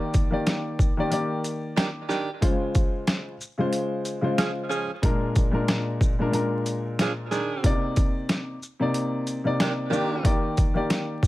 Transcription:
0.00 0.27 D#3 loud
0.00 0.28 A#3 medium
0.00 0.28 G4 medium
0.00 0.29 D5 loud
0.14 kick loud
0.14 closed hi-hat medium
0.14 shaker medium
0.30 0.91 D#3 medium
0.30 0.91 A#3 medium
0.30 0.92 G4 medium
0.30 0.92 D5 loud
0.46 snare loud
0.46 closed hi-hat medium
0.79 kick loud
0.79 shaker medium
0.97 1.09 D#3 medium
0.97 1.10 A#3 medium
0.97 1.11 G4 medium
0.97 1.12 D5 loud
1.10 2.17 D#3 loud
1.10 2.18 A#3 medium
1.10 2.18 G4 medium
1.10 2.19 D5 loud
1.10 closed hi-hat medium
1.44 closed hi-hat medium
1.44 shaker medium
1.76 1.88 D#3 loud
1.76 1.88 D4 medium
1.76 1.88 G4 loud
1.76 snare loud
1.76 closed hi-hat medium
2.09 2.30 D#3 medium
2.09 2.30 D4 loud
2.09 2.30 G4 loud
2.09 snare soft
2.09 shaker medium
2.41 3.33 C#3 medium
2.41 3.33 G#3 medium
2.41 3.34 F4 medium
2.41 3.34 C5 loud
2.41 kick loud
2.41 closed hi-hat medium
2.75 kick loud
2.75 closed hi-hat medium
2.75 shaker medium
3.07 snare loud
3.07 closed hi-hat medium
3.41 shaker medium
3.58 4.17 C#3 medium
3.58 4.18 G#3 medium
3.58 4.18 F4 medium
3.58 4.19 C5 loud
3.73 closed hi-hat medium
4.05 closed hi-hat medium
4.05 shaker medium
4.21 4.82 C#3 medium
4.21 4.82 G#3 medium
4.21 4.83 F4 medium
4.21 4.83 C5 loud
4.37 4.50 F3 loud
4.37 4.50 C#4 loud
4.37 4.50 G#4 loud
4.37 snare loud
4.37 closed hi-hat medium
4.69 4.90 F3 loud
4.69 4.90 C#4 loud
4.69 4.90 G#4 loud
4.69 shaker soft
5.02 5.49 A#2 medium
5.02 5.50 G#3 medium
5.02 5.50 D4 medium
5.02 5.51 A#4 loud
5.02 kick loud
5.02 closed hi-hat medium
5.36 kick loud
5.36 closed hi-hat medium
5.36 shaker medium
5.51 6.12 A#2 loud
5.51 6.13 G#3 medium
5.51 6.13 D4 medium
5.51 6.13 A#4 loud
5.68 snare loud
5.68 closed hi-hat medium
6.01 kick loud
6.01 shaker medium
6.19 6.30 A#2 medium
6.19 6.31 G#3 medium
6.19 6.32 D4 medium
6.19 6.33 A#4 loud
6.31 7.38 A#2 medium
6.31 7.39 G#3 medium
6.31 7.39 D4 medium
6.31 7.40 A#4 loud
6.31 closed hi-hat medium
6.66 closed hi-hat medium
6.66 shaker medium
6.99 7.12 F3 loud
6.99 7.12 D4 medium
6.99 7.12 G#4 loud
6.99 snare loud
6.99 closed hi-hat medium
7.31 7.75 D#3 loud
7.31 7.75 D4 loud
7.31 7.75 G#4 loud
7.31 snare soft
7.31 shaker medium
7.63 8.55 C3 medium
7.63 8.55 A#3 medium
7.63 8.56 D#4 medium
7.63 8.56 D5 loud
7.63 kick loud
7.63 closed hi-hat medium
7.96 kick loud
7.96 closed hi-hat medium
7.96 shaker medium
8.29 snare loud
8.29 closed hi-hat medium
8.63 shaker medium
8.80 9.39 C3 loud
8.80 9.40 A#3 medium
8.80 9.40 D#4 medium
8.80 9.41 D5 loud
8.94 closed hi-hat medium
9.27 closed hi-hat medium
9.27 shaker medium
9.44 9.91 C3 medium
9.44 9.89 A#3 medium
9.44 9.92 D#4 medium
9.44 9.91 D5 loud
9.60 9.72 D#3 loud
9.60 9.72 D4 loud
9.60 9.72 G4 loud
9.60 snare loud
9.60 closed hi-hat medium
9.90 10.13 D#3 loud
9.90 10.35 D#3 loud
9.90 10.13 A#3 medium
9.90 10.35 D4 loud
9.90 10.35 G4 loud
9.90 10.14 G4 medium
9.90 10.14 D5 loud
9.90 shaker soft
10.23 10.71 D#3 loud
10.23 10.71 A#3 medium
10.23 10.72 G4 medium
10.23 10.72 D5 loud
10.23 kick loud
10.23 closed hi-hat medium
10.57 kick loud
10.57 closed hi-hat medium
10.57 shaker medium
10.74 11.27 D#3 medium
10.74 11.27 A#3 medium
10.74 11.27 G4 medium
10.74 11.27 D5 loud
10.90 snare loud
10.90 closed hi-hat medium
11.23 kick loud
11.23 shaker medium

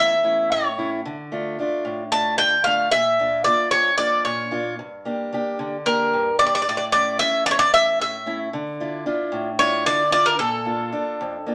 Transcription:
0.00 0.49 E2 medium
0.00 0.13 A3 soft
0.00 0.13 C#4 soft
0.00 0.14 E4 medium
0.00 0.51 E5 loud
0.23 0.67 A3 soft
0.23 0.67 C#4 soft
0.23 0.67 E4 medium
0.52 1.03 A2 medium
0.52 0.89 C#5 medium
0.78 1.00 A3 soft
0.78 1.00 C#4 soft
0.78 1.00 E4 medium
1.05 1.57 D3 medium
1.32 1.57 A3 soft
1.32 1.58 D4 soft
1.32 1.59 F4 medium
1.59 2.01 A3 soft
1.59 2.02 D4 soft
1.59 2.02 F4 soft
1.85 2.37 A2 medium
2.12 2.55 A3 medium
2.12 2.55 D4 soft
2.12 2.55 F4 soft
2.12 2.38 A5 medium
2.38 2.91 D3 medium
2.38 2.63 G5 loud
2.64 2.87 A3 medium
2.64 2.87 D4 soft
2.64 2.88 F4 medium
2.64 2.91 F5 medium
2.91 3.44 A#2 medium
2.91 3.44 E5 medium
3.19 3.44 A#3 medium
3.19 3.45 D4 soft
3.19 3.46 F4 medium
3.44 3.88 A#3 medium
3.44 3.88 D4 soft
3.44 3.89 F4 medium
3.44 3.71 D5 medium
3.71 4.24 F2 medium
3.71 3.97 C#5 medium
3.98 4.41 A#3 soft
3.98 4.41 D4 soft
3.98 4.42 F4 soft
3.98 4.23 D5 medium
4.25 4.77 A#2 medium
4.25 4.75 C#5 medium
4.51 4.73 A#3 medium
4.51 4.73 D4 soft
4.51 4.73 F4 medium
4.79 5.31 G2 medium
5.05 5.31 A#3 soft
5.05 5.32 D4 soft
5.05 5.33 G4 soft
5.33 5.75 A#3 medium
5.33 5.76 D4 soft
5.33 5.76 G4 medium
5.59 6.11 D3 medium
5.86 6.28 A#3 medium
5.86 6.29 D4 soft
5.86 6.29 G4 medium
5.86 6.36 A#4 medium
6.13 6.65 G2 medium
6.39 6.61 A#3 medium
6.39 6.62 D4 soft
6.39 6.62 G4 soft
6.39 6.45 D5 medium
6.46 6.54 D5 medium
6.55 6.61 D5 medium
6.62 6.68 D5 medium
6.68 7.19 A2 medium
6.68 6.76 D5 medium
6.77 6.84 D5 medium
6.92 7.19 A3 soft
6.92 7.19 C#4 soft
6.92 7.20 E4 soft
6.92 7.19 D5 medium
7.19 7.63 A3 medium
7.19 7.63 C#4 soft
7.19 7.63 E4 medium
7.19 7.44 E5 loud
7.46 7.98 E2 medium
7.46 7.51 D5 loud
7.51 7.59 C#5 medium
7.59 7.73 D5 loud
7.73 8.16 A3 medium
7.73 8.16 C#4 soft
7.73 8.16 E4 medium
7.73 7.98 E5 loud
8.00 8.51 A2 medium
8.00 8.38 E5 medium
8.26 8.47 A3 medium
8.26 8.48 C#4 soft
8.26 8.48 E4 medium
8.53 9.05 D3 medium
8.80 9.05 D4 soft
8.80 9.06 E4 soft
8.80 9.06 F4 medium
9.06 9.49 D4 soft
9.06 9.49 E4 soft
9.06 9.49 F4 medium
9.32 9.84 A2 medium
9.59 10.02 D4 soft
9.59 10.02 E4 soft
9.59 10.02 F4 medium
9.59 9.84 C#5 loud
9.86 10.37 D3 medium
9.86 10.11 D5 loud
10.11 10.33 D4 medium
10.11 10.33 E4 soft
10.11 10.34 F4 medium
10.11 10.25 D5 loud
10.26 10.39 A#4 medium
10.39 10.91 A#2 medium
10.39 11.55 A4 medium
10.65 10.91 A#3 soft
10.65 10.91 D4 soft
10.65 10.92 F4 soft
10.92 11.35 A#3 soft
10.92 11.35 D4 soft
10.92 11.35 F4 medium
11.21 11.55 F2 medium
11.46 11.55 A#3 medium
11.46 11.55 D4 soft
11.46 11.55 F4 soft

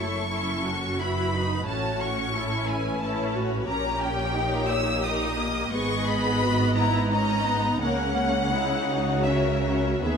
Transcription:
0.00 1.63 F#1 medium
0.00 1.62 F#2 medium
0.00 0.31 A3 soft
0.00 0.29 E4 medium
0.00 0.30 A4 soft
0.00 0.30 C#5 soft
0.00 0.98 C#6 medium
0.31 0.99 C#4 soft
0.31 0.65 E4 medium
0.31 0.99 A4 soft
0.65 1.65 F#4 medium
1.00 1.34 E4 medium
1.00 1.67 B4 soft
1.00 1.66 B5 medium
1.33 1.67 D#4 medium
1.66 3.64 A1 medium
1.66 3.64 A2 medium
1.66 2.98 C#4 medium
1.66 2.34 F#4 medium
1.66 2.33 F#4 medium
1.66 2.33 C#5 medium
1.66 1.99 A5 medium
2.00 2.68 C#6 medium
2.34 3.01 E4 medium
2.34 2.69 A4 medium
2.34 4.69 C#5 medium
2.67 3.65 B4 medium
2.67 3.01 G#5 medium
3.01 3.67 C#4 medium
3.01 3.34 E4 medium
3.01 3.34 A5 medium
3.35 3.68 F#4 medium
3.67 5.72 A#1 medium
3.67 5.72 A#2 medium
3.67 4.35 C#4 medium
3.67 5.72 G4 medium
3.67 4.34 A#4 medium
3.67 3.99 A#5 medium
4.01 4.69 G5 medium
4.35 5.02 D#4 medium
4.35 4.68 A#4 medium
4.69 5.03 C#5 medium
4.69 5.03 E6 medium
5.04 5.37 D#4 medium
5.04 5.72 A#4 medium
5.04 7.10 D#5 medium
5.04 5.72 D#6 medium
5.38 5.72 A#3 medium
5.71 7.77 G#1 medium
5.71 7.77 G#2 medium
5.71 7.10 B3 medium
5.71 6.41 G#4 medium
5.71 7.77 B4 medium
5.71 6.06 C#6 medium
6.07 6.76 B5 medium
6.41 6.75 F#4 medium
6.75 7.10 E4 medium
6.75 7.09 A#5 medium
7.10 7.46 C#4 medium
7.10 7.81 D#4 medium
7.10 7.80 D#5 medium
7.10 7.80 A#5 medium
7.46 7.81 B3 medium
7.81 10.00 C#2 medium
7.81 10.00 C#3 medium
7.81 8.51 A#3 medium
7.81 8.53 C#4 medium
7.81 8.16 A#4 medium
7.81 8.18 C#5 medium
7.81 9.22 F#5 loud
8.19 10.01 C#5 medium
8.52 9.25 D#4 medium
8.52 8.88 E4 medium
8.89 10.02 F#4 medium
9.24 9.62 C#4 medium
9.24 10.04 A#4 medium
9.24 10.01 E5 medium
9.63 10.03 C#4 medium
10.02 10.17 D#2 medium
10.02 10.17 D#3 medium
10.02 10.17 B3 medium
10.02 10.17 G#4 medium
10.02 10.17 B4 soft
10.02 10.17 E5 medium

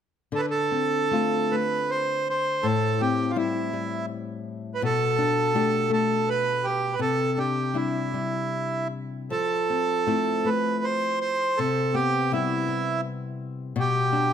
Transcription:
0.32 2.64 D3 soft
0.32 0.41 A4 medium
0.38 0.46 B4 soft
0.50 1.56 A4 medium
0.71 1.11 C4 soft
1.11 1.51 A3 soft
1.11 3.01 C4 soft
1.11 2.72 F4 soft
1.51 3.36 A3 soft
1.51 1.91 B4 medium
1.90 2.28 C5 medium
2.30 2.67 C5 medium
2.63 4.82 A2 medium
2.63 3.02 A4 medium
3.01 3.35 C4 soft
3.01 3.32 G4 medium
3.30 3.37 F4 soft
3.36 3.73 G3 soft
3.36 4.89 C4 soft
3.36 4.89 E4 soft
3.36 4.06 E4 medium
3.73 5.54 G3 soft
4.75 4.82 B4 medium
4.82 6.99 B2 medium
4.82 5.92 A4 medium
5.18 5.55 D4 soft
5.55 5.88 A3 soft
5.55 7.37 D4 soft
5.55 7.75 G4 soft
5.90 7.08 A3 soft
5.90 6.30 A4 medium
6.29 6.66 B4 medium
6.64 6.95 G4 medium
6.93 7.00 B4 medium
6.99 9.31 C3 medium
6.99 7.39 A4 medium
7.37 7.73 D4 soft
7.37 7.77 G4 medium
7.74 8.12 G3 soft
7.74 9.38 D4 soft
7.74 10.07 E4 soft
7.74 8.88 E4 soft
8.14 9.39 G3 soft
9.30 11.59 F3 soft
9.30 10.50 A4 medium
9.70 10.07 C4 soft
10.07 10.44 A3 soft
10.07 11.94 C4 soft
10.07 12.33 E4 soft
10.45 11.65 A3 soft
10.45 10.86 B4 medium
10.84 11.19 C5 medium
11.21 11.59 C5 medium
11.57 13.75 C3 medium
11.57 11.96 A4 medium
11.94 12.32 B3 soft
11.94 12.32 G4 medium
12.32 12.67 G3 soft
12.32 14.12 B3 soft
12.32 13.01 E4 medium
12.32 13.84 E4 soft
12.68 14.33 G3 soft
13.76 14.33 B2 medium
13.76 14.33 G4 medium
14.12 14.33 D4 soft

